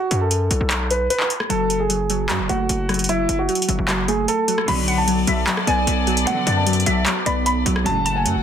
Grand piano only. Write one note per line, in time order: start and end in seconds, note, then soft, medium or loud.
0.00 0.19 F#4 loud
0.21 0.86 A4 medium
0.91 1.06 B4 medium
1.10 1.26 B4 loud
1.50 1.78 A4 loud
1.80 2.26 G#4 medium
2.49 3.05 F#4 medium
3.09 3.37 E4 loud
3.39 4.04 F#4 medium
4.08 4.24 G#4 medium
4.28 4.66 A4 medium
4.68 4.96 B5 loud
4.98 5.44 A5 medium
5.67 6.23 G#5 loud
6.27 6.55 F#5 loud
6.57 7.22 A5 medium
7.26 7.42 B5 medium
7.46 7.61 B5 loud
7.86 8.14 A5 loud
8.16 8.43 G#5 medium